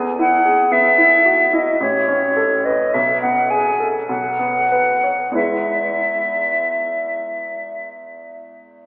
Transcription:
Already playing: E2 B3 G#4 A4
0.19 E4 F#5
0.45 G#4
0.71 B3 E5
0.98 E4
1.26 F#4
1.53 E4 D#5
1.81 A1 C#5
2.08 C#4
2.36 A4
2.65 B4 D#5
2.94 B1 E5
3.22 B3 F#5
3.50 G#4 G#5
3.80 A4
4.09 B1 F#5
4.39 B3
4.72 B4
5.03 C#5
5.31 E2 G#3 E4 B4
5.36 E5

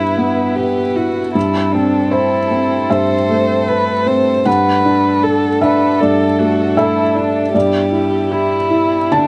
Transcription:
Already playing: G2 B3 E4 B4
0.17 B3
0.55 G4 B4
0.96 E4 F#4
1.33 G2 A3 C4 E4 A4
1.72 C4 D4
2.11 E4 C5
2.51 C4
2.90 G2 C5 E5
3.29 A3
3.68 B4
4.06 C4 C5
4.45 G2 D4 A4 B4 F#5
4.85 D4
5.24 A4
5.61 D4 B4 E5
6.00 G2 A4 D5
6.39 A3 F#4
6.77 E4 A4 E5
7.15 D4
7.54 G2 G3 B3 E4 G4 D5
7.92 E4
8.31 E4 G4
8.70 E4
9.12 D3 D4 A5

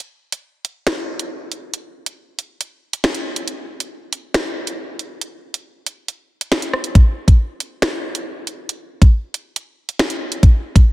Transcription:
0.32 closed hi-hat
0.65 closed hi-hat
0.87 finger snap, snare, closed hi-hat
1.19 closed hi-hat
1.52 closed hi-hat
1.74 closed hi-hat
2.06 closed hi-hat
2.39 closed hi-hat
2.61 closed hi-hat
2.93 closed hi-hat
3.04 finger snap, snare
3.15 closed hi-hat
3.36 closed hi-hat
3.48 closed hi-hat
3.80 closed hi-hat
4.13 closed hi-hat
4.34 finger snap, snare, closed hi-hat
4.67 closed hi-hat
4.99 closed hi-hat
5.21 closed hi-hat
5.54 closed hi-hat
5.86 closed hi-hat
6.08 closed hi-hat
6.41 closed hi-hat
6.52 finger snap, snare
6.62 closed hi-hat
6.73 cross-stick
6.84 closed hi-hat
6.95 kick, closed hi-hat
7.28 kick, closed hi-hat
7.60 closed hi-hat
7.82 finger snap, snare, closed hi-hat
8.15 closed hi-hat
8.47 closed hi-hat
8.69 closed hi-hat
9.02 kick, closed hi-hat
9.34 closed hi-hat
9.56 closed hi-hat
9.89 closed hi-hat
9.99 finger snap, snare
10.10 closed hi-hat
10.32 closed hi-hat
10.43 kick, closed hi-hat
10.76 kick, closed hi-hat

